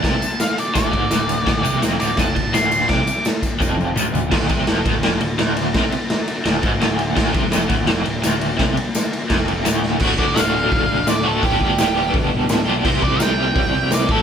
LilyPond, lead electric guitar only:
\new Staff \with { instrumentName = "Lead electric guitar" } { \time 4/4 \key c \lydian \tempo 4 = 169 a''4 f''8 d''8 d''2~ | d''4 r8 d''8 a''4 c'''4 | d'''4 r2. | r1 |
r1 | r1 | r1 | r8 d''8 f''2 d''8 a'8 |
g'2 r2 | r8 d''8 g''2 d''8 a'8 | }